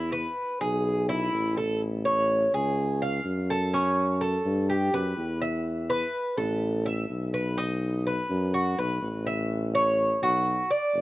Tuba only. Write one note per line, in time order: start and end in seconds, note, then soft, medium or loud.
0.00 0.28 E2 medium
0.61 1.29 B1 medium
1.32 2.47 A1 medium
2.53 3.21 C#2 medium
3.25 4.39 F#2 medium
4.45 4.90 G2 medium
4.93 5.16 F#2 medium
5.17 6.04 E2 medium
6.38 7.06 A1 loud
7.10 8.24 B1 medium
8.30 8.75 F#2 medium
8.78 9.00 B1 medium
9.02 10.16 A1 medium
10.22 10.64 B1 medium
10.94 11.01 F#1 medium